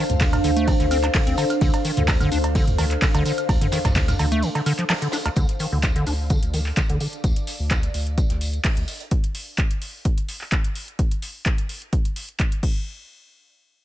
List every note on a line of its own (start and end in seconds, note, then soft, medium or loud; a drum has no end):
0.00 5.32 D4 medium
0.00 9.11 D4 medium
0.00 9.11 A4 medium
0.00 5.32 C5 medium
0.00 6.17 C5 medium
0.00 5.32 F5 loud
0.00 9.11 F5 medium
0.10 0.39 D2 loud
0.10 closed hi-hat medium
0.10 mid tom medium
0.10 shaker soft
0.20 0.25 D3 loud
0.20 kick loud
0.20 snare loud
0.20 clap loud
0.20 ride medium
0.20 tambourine medium
0.20 shaker soft
0.33 closed hi-hat soft
0.33 mid tom medium
0.33 cowbell medium
0.33 high woodblock medium
0.33 shaker soft
0.44 0.74 D2 medium
0.44 0.51 D3 medium
0.44 open hi-hat medium
0.44 tambourine medium
0.44 shaker medium
0.57 0.69 A3 loud
0.57 closed hi-hat medium
0.57 shaker soft
0.67 0.74 D3 loud
0.67 kick loud
0.67 ride medium
0.67 tambourine loud
0.67 cowbell medium
0.67 shaker soft
0.80 1.09 D2 loud
0.80 0.86 D3 medium
0.80 snare soft
0.80 closed hi-hat soft
0.80 shaker soft
0.91 0.98 C4 medium
0.91 open hi-hat loud
0.91 tambourine medium
0.91 high woodblock medium
0.91 shaker medium
1.03 1.07 D4 medium
1.03 clap soft
1.03 closed hi-hat medium
1.03 cowbell medium
1.03 shaker soft
1.14 1.21 D3 medium
1.14 kick loud
1.14 snare loud
1.14 clap loud
1.14 open hi-hat medium
1.14 ride medium
1.14 shaker soft
1.27 1.35 D2 loud
1.27 1.36 C4 medium
1.27 closed hi-hat medium
1.27 shaker soft
1.37 1.45 D3 medium
1.37 open hi-hat medium
1.37 tambourine medium
1.37 cowbell medium
1.37 shaker medium
1.50 closed hi-hat soft
1.50 closed hi-hat medium
1.50 high woodblock medium
1.50 shaker soft
1.61 1.70 D2 loud
1.61 1.72 D3 medium
1.61 kick loud
1.61 ride medium
1.61 tambourine medium
1.61 shaker soft
1.74 closed hi-hat medium
1.74 cowbell medium
1.74 shaker soft
1.85 1.92 D#3 medium
1.85 open hi-hat loud
1.85 tambourine medium
1.85 shaker medium
1.97 2.26 D2 loud
1.97 2.03 D3 medium
1.97 closed hi-hat medium
1.97 mid tom medium
1.97 shaker soft
2.08 kick loud
2.08 snare loud
2.08 clap loud
2.08 ride medium
2.08 tambourine medium
2.08 cowbell medium
2.08 shaker soft
2.20 2.30 D3 loud
2.20 closed hi-hat soft
2.20 mid tom medium
2.20 high woodblock medium
2.20 shaker soft
2.32 2.62 D2 medium
2.32 2.38 D4 medium
2.32 open hi-hat medium
2.32 tambourine medium
2.32 shaker medium
2.44 closed hi-hat medium
2.44 cowbell medium
2.44 shaker soft
2.55 2.65 D3 medium
2.55 kick loud
2.55 ride medium
2.55 tambourine medium
2.55 shaker soft
2.67 2.97 D2 medium
2.67 closed hi-hat soft
2.67 mid tom medium
2.67 shaker soft
2.78 2.85 D#3 medium
2.78 open hi-hat loud
2.78 tambourine medium
2.78 cowbell medium
2.78 shaker medium
2.91 clap soft
2.91 closed hi-hat medium
2.91 shaker soft
3.02 3.06 D3 loud
3.02 kick loud
3.02 snare loud
3.02 clap loud
3.02 ride medium
3.02 tambourine medium
3.02 shaker medium
3.15 3.22 D2 loud
3.15 3.24 D3 loud
3.15 closed hi-hat medium
3.15 cowbell medium
3.15 shaker soft
3.25 3.32 D3 medium
3.25 open hi-hat medium
3.25 tambourine medium
3.25 shaker medium
3.38 closed hi-hat medium
3.38 high woodblock medium
3.38 shaker soft
3.49 3.58 D2 loud
3.49 kick loud
3.49 ride medium
3.49 tambourine medium
3.49 cowbell medium
3.49 shaker soft
3.61 3.67 D3 medium
3.61 closed hi-hat medium
3.61 mid tom medium
3.61 shaker soft
3.72 3.79 D#3 medium
3.72 snare loud
3.72 open hi-hat loud
3.72 tambourine medium
3.72 shaker medium
3.85 4.14 D2 loud
3.85 kick medium
3.85 snare loud
3.85 closed hi-hat medium
3.85 mid tom medium
3.85 tambourine medium
3.85 cowbell medium
3.85 shaker soft
3.95 4.00 D3 loud
3.95 kick loud
3.95 snare loud
3.95 clap loud
3.95 ride medium
3.95 tambourine medium
3.95 shaker soft
4.08 snare loud
4.08 closed hi-hat soft
4.08 mid tom medium
4.08 tambourine medium
4.08 high woodblock medium
4.08 shaker soft
4.19 4.43 D2 medium
4.19 4.26 D3 medium
4.19 open hi-hat medium
4.19 tambourine medium
4.19 cowbell medium
4.19 shaker medium
4.32 4.44 A3 loud
4.32 closed hi-hat medium
4.32 shaker soft
4.42 4.50 D3 loud
4.42 ride medium
4.42 tambourine medium
4.42 shaker soft
4.55 4.61 D3 medium
4.55 snare soft
4.55 closed hi-hat soft
4.55 cowbell medium
4.55 shaker soft
4.66 4.73 D3 loud
4.66 open hi-hat loud
4.66 tambourine medium
4.66 high woodblock medium
4.66 shaker medium
4.79 4.85 F3 medium
4.79 clap soft
4.79 closed hi-hat medium
4.79 shaker soft
4.89 4.94 F3 loud
4.89 snare loud
4.89 clap loud
4.89 open hi-hat medium
4.89 ride medium
4.89 cowbell medium
4.89 shaker soft
5.02 5.08 D3 medium
5.02 closed hi-hat medium
5.02 shaker soft
5.12 5.17 D4 medium
5.12 snare loud
5.12 open hi-hat medium
5.12 tambourine medium
5.12 shaker medium
5.25 5.29 D2 loud
5.25 closed hi-hat medium
5.25 cowbell medium
5.25 high woodblock medium
5.25 shaker soft
5.36 5.45 D2 loud
5.36 5.47 D3 medium
5.36 kick loud
5.36 closed hi-hat medium
5.36 tambourine medium
5.49 closed hi-hat medium
5.59 5.67 D#3 medium
5.59 open hi-hat loud
5.59 tambourine medium
5.72 6.01 D2 loud
5.72 5.78 D3 medium
5.81 9.11 D5 medium
5.81 kick loud
5.81 snare loud
5.81 clap loud
5.81 closed hi-hat medium
5.81 tambourine loud
5.96 6.05 D3 loud
5.96 closed hi-hat medium
6.06 6.37 D2 medium
6.06 6.14 D4 medium
6.06 open hi-hat medium
6.06 tambourine medium
6.30 6.40 D3 medium
6.30 kick loud
6.30 closed hi-hat medium
6.30 tambourine medium
6.43 6.72 D2 loud
6.43 closed hi-hat medium
6.53 6.60 D#3 medium
6.53 open hi-hat loud
6.53 tambourine medium
6.66 clap soft
6.77 6.81 D3 loud
6.77 kick loud
6.77 snare loud
6.77 clap loud
6.77 closed hi-hat medium
6.77 tambourine medium
6.89 6.97 D2 loud
6.89 6.99 D3 loud
6.89 closed hi-hat medium
7.00 7.07 D3 medium
7.00 open hi-hat medium
7.00 tambourine medium
7.13 closed hi-hat soft
7.24 7.33 D2 loud
7.24 kick loud
7.24 closed hi-hat medium
7.24 tambourine medium
7.36 closed hi-hat medium
7.47 open hi-hat loud
7.47 tambourine medium
7.60 7.89 D2 loud
7.71 kick loud
7.71 snare loud
7.71 clap loud
7.71 closed hi-hat medium
7.71 tambourine loud
7.83 closed hi-hat medium
7.94 8.24 D2 medium
7.94 open hi-hat loud
7.94 tambourine medium
8.07 closed hi-hat soft
8.18 kick loud
8.18 closed hi-hat medium
8.18 tambourine medium
8.30 8.59 D2 loud
8.30 snare soft
8.30 closed hi-hat medium
8.41 open hi-hat loud
8.41 tambourine medium
8.53 closed hi-hat soft
8.64 kick loud
8.64 snare loud
8.64 clap loud
8.64 closed hi-hat medium
8.64 open hi-hat medium
8.77 8.85 D2 loud
8.77 closed hi-hat medium
8.88 open hi-hat medium
8.88 tambourine medium
9.00 closed hi-hat soft
9.11 kick loud
9.11 closed hi-hat medium
9.24 closed hi-hat soft
9.35 open hi-hat loud
9.58 kick loud
9.58 clap loud
9.58 closed hi-hat medium
9.71 closed hi-hat soft
9.82 open hi-hat medium
10.05 kick loud
10.05 closed hi-hat medium
10.18 closed hi-hat soft
10.29 open hi-hat loud
10.41 clap soft
10.52 kick loud
10.52 clap loud
10.52 closed hi-hat medium
10.64 closed hi-hat medium
10.75 open hi-hat loud
10.88 closed hi-hat soft
10.99 kick loud
10.99 closed hi-hat medium
11.11 closed hi-hat soft
11.22 open hi-hat loud
11.46 kick loud
11.46 clap loud
11.46 closed hi-hat medium
11.58 closed hi-hat soft
11.69 open hi-hat medium
11.82 closed hi-hat soft
11.93 kick loud
11.93 closed hi-hat medium
12.05 closed hi-hat soft
12.16 open hi-hat loud
12.29 closed hi-hat soft
12.40 kick loud
12.40 clap loud
12.40 closed hi-hat medium
12.52 closed hi-hat soft
12.63 kick loud
12.63 crash medium